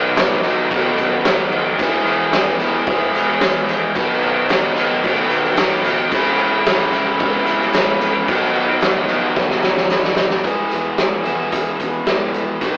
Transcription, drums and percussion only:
0.17 snare, tambourine, crash
0.44 tambourine, crash
0.71 kick, tambourine, crash
0.98 kick, tambourine, crash
1.25 snare, tambourine, crash
1.52 crash
1.79 kick, tambourine, crash
2.07 crash
2.33 snare, tambourine, crash
2.60 tambourine, crash
2.87 kick, crash
3.15 tambourine, crash
3.28 snare
3.41 snare, tambourine, crash
3.55 snare
3.69 tambourine, crash
3.95 kick, tambourine, crash
4.23 crash
4.49 snare, tambourine, crash
4.76 tambourine, crash
5.04 kick, crash
5.30 tambourine, crash
5.44 snare
5.56 snare, tambourine, crash
5.84 tambourine, crash
6.11 kick, tambourine, crash
6.39 crash
6.66 snare, tambourine, crash
6.93 tambourine, crash
7.20 kick, crash
7.46 tambourine, crash
7.61 snare
7.73 snare, tambourine, crash
7.88 snare
8.01 tambourine, crash
8.28 kick, tambourine, crash
8.56 crash
8.81 snare, tambourine, crash
9.08 tambourine, crash
9.35 kick, snare, tambourine
9.50 snare
9.63 snare, tambourine
9.77 snare
9.90 snare, tambourine
10.04 snare
10.16 snare, tambourine
10.30 snare
10.44 kick, closed hi-hat
10.71 closed hi-hat
10.98 snare, closed hi-hat
11.26 closed hi-hat
11.52 kick, closed hi-hat
11.80 kick, closed hi-hat
12.07 snare, closed hi-hat
12.34 closed hi-hat
12.61 kick, closed hi-hat

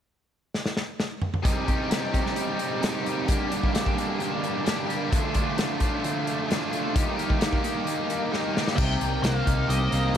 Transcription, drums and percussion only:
0.54 snare
0.66 snare
0.77 snare
1.00 snare
1.22 mid tom
1.34 mid tom
1.45 kick, closed hi-hat
1.68 kick, closed hi-hat
1.91 snare, closed hi-hat
2.14 kick, closed hi-hat
2.26 snare
2.36 closed hi-hat
2.59 closed hi-hat
2.83 snare, closed hi-hat
3.06 closed hi-hat
3.28 kick, closed hi-hat
3.52 closed hi-hat
3.63 kick
3.75 snare, closed hi-hat
3.86 kick
3.98 closed hi-hat
4.20 closed hi-hat
4.44 closed hi-hat
4.66 snare, closed hi-hat
4.90 closed hi-hat
5.12 kick, closed hi-hat
5.34 kick, closed hi-hat
5.58 snare, closed hi-hat
5.80 kick, closed hi-hat
6.04 closed hi-hat
6.27 closed hi-hat
6.51 snare, closed hi-hat
6.73 closed hi-hat
6.96 kick, closed hi-hat
7.19 closed hi-hat
7.30 kick
7.41 snare, closed hi-hat
7.53 kick
7.64 closed hi-hat
7.87 closed hi-hat
8.10 closed hi-hat
8.34 snare
8.57 snare
8.68 snare
8.78 kick, crash
9.01 closed hi-hat
9.24 snare, closed hi-hat
9.47 kick, closed hi-hat
9.70 closed hi-hat
9.92 closed hi-hat

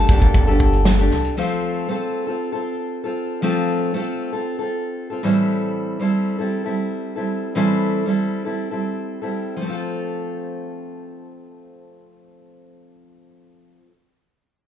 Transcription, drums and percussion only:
0.09 kick
0.21 kick, shaker
0.34 kick, shaker
0.48 shaker
0.60 kick
0.73 shaker
0.85 snare, shaker
0.99 shaker
1.11 snare
1.24 shaker

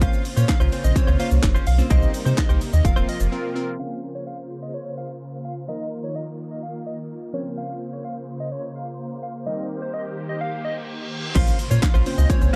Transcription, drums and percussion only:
0.02 kick, closed hi-hat, shaker
0.13 shaker
0.25 open hi-hat, shaker
0.37 shaker
0.48 kick, snare, clap, closed hi-hat, shaker
0.60 shaker
0.72 open hi-hat, shaker
0.84 shaker
0.96 kick, closed hi-hat, shaker
1.08 shaker
1.20 open hi-hat, shaker
1.31 shaker
1.43 kick, snare, clap, closed hi-hat, shaker
1.55 shaker
1.67 open hi-hat, shaker
1.79 shaker
1.90 kick, closed hi-hat, shaker
2.02 shaker
2.14 open hi-hat, shaker
2.26 shaker
2.37 kick, snare, clap, closed hi-hat, shaker
2.49 shaker
2.61 open hi-hat, shaker
2.73 shaker
2.85 kick, closed hi-hat, shaker
2.97 shaker
3.09 open hi-hat, shaker
3.20 shaker
11.35 kick, closed hi-hat, crash, shaker
11.47 shaker
11.59 open hi-hat, shaker
11.71 shaker
11.82 kick, snare, clap, closed hi-hat, shaker
11.94 shaker
12.06 open hi-hat, shaker
12.18 shaker
12.30 kick, closed hi-hat, shaker
12.42 shaker

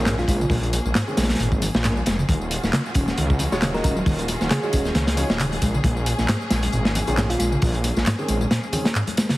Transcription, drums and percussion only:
0.06 snare, clap, closed hi-hat, tambourine
0.18 snare, tambourine, muted conga, high conga
0.28 kick, closed hi-hat, open hi-hat, tambourine
0.41 tambourine
0.50 kick, open hi-hat, tambourine, high conga
0.63 closed hi-hat, tambourine
0.73 closed hi-hat, open hi-hat, tambourine, muted conga
0.86 tambourine, high conga
0.95 snare, clap, closed hi-hat, tambourine
1.08 tambourine
1.17 snare, closed hi-hat, open hi-hat, tambourine
1.23 snare, closed hi-hat
1.29 snare, closed hi-hat, tambourine, muted conga, high conga
1.35 snare, closed hi-hat
1.40 closed hi-hat, tambourine
1.52 kick, tambourine
1.61 closed hi-hat, open hi-hat, tambourine, muted conga, high conga, low conga
1.74 snare, tambourine
1.84 snare, clap, closed hi-hat, tambourine
1.96 tambourine, high conga
2.06 snare, closed hi-hat, open hi-hat, tambourine
2.19 tambourine
2.29 kick, closed hi-hat, tambourine, high conga
2.41 tambourine
2.51 closed hi-hat, open hi-hat, tambourine
2.63 snare, tambourine, high conga
2.73 snare, clap, closed hi-hat, tambourine
2.86 tambourine
2.95 kick, closed hi-hat, open hi-hat, tambourine
3.08 snare, tambourine, high conga
3.18 closed hi-hat, tambourine
3.30 kick, tambourine
3.39 closed hi-hat, open hi-hat, tambourine, high conga, low conga
3.52 snare, tambourine, muted conga
3.62 snare, clap, closed hi-hat, tambourine
3.74 snare, tambourine, muted conga, high conga
3.84 kick, closed hi-hat, open hi-hat, tambourine
3.97 tambourine
4.06 kick, open hi-hat, tambourine, high conga
4.19 closed hi-hat, tambourine
4.28 closed hi-hat, open hi-hat, tambourine, muted conga
4.41 snare, tambourine, high conga
4.51 snare, clap, closed hi-hat, tambourine
4.63 tambourine
4.73 kick, closed hi-hat, open hi-hat, tambourine
4.85 snare, tambourine, muted conga, high conga
4.95 snare, closed hi-hat, tambourine
5.07 snare, closed hi-hat, tambourine
5.17 closed hi-hat, open hi-hat, tambourine, muted conga, high conga, low conga
5.30 snare, tambourine
5.40 clap, closed hi-hat, tambourine
5.52 closed hi-hat, tambourine, high conga
5.62 kick, closed hi-hat, open hi-hat, tambourine
5.74 tambourine
5.84 kick, closed hi-hat, tambourine, high conga
5.97 tambourine
6.06 closed hi-hat, open hi-hat, tambourine
6.18 snare, tambourine, high conga
6.28 snare, clap, closed hi-hat, tambourine
6.41 tambourine
6.50 snare, open hi-hat, tambourine
6.63 closed hi-hat, tambourine, high conga
6.72 closed hi-hat, tambourine
6.85 snare, tambourine
6.95 closed hi-hat, open hi-hat, tambourine, high conga, low conga
7.07 closed hi-hat, tambourine, muted conga
7.17 snare, clap, tambourine
7.30 closed hi-hat, tambourine, muted conga, high conga
7.40 closed hi-hat, open hi-hat, tambourine
7.52 tambourine
7.62 kick, open hi-hat, tambourine, high conga
7.74 closed hi-hat, tambourine
7.84 closed hi-hat, open hi-hat, tambourine, muted conga
7.96 snare, tambourine, high conga
8.06 snare, clap, closed hi-hat, tambourine
8.19 tambourine
8.28 open hi-hat, tambourine
8.41 tambourine, muted conga, high conga
8.51 snare, closed hi-hat, tambourine
8.63 tambourine
8.72 closed hi-hat, open hi-hat, tambourine, muted conga, high conga, low conga
8.85 snare, closed hi-hat, tambourine
8.95 clap, tambourine
9.07 closed hi-hat, tambourine, high conga
9.17 snare, closed hi-hat, open hi-hat, tambourine
9.29 snare, closed hi-hat, tambourine

